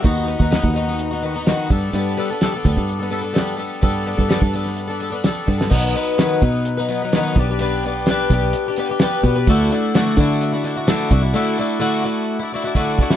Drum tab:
CC |----------------|----------------|----------------|x---------------|
HH |x-x-x-x-x-x-x-x-|x-x-x-x-x-x-x-x-|x-x-x-x-x-x-x---|--x-x-x-x-x-x-x-|
SD |----o--o----o---|----o-------o---|----o--o----o--o|----o-------o---|
BD |o--o-o--------o-|------oo--------|o--o-o--------o-|o-----o-------o-|

CC |----------------|----------------|----------------|
HH |x-x-x-x-x-x-x-x-|x-x-x-x-x-x-x-x-|----------------|
SD |----o-------o---|----oo------o---|---------------o|
BD |------o-------o-|o-----o-------o-|------------o-o-|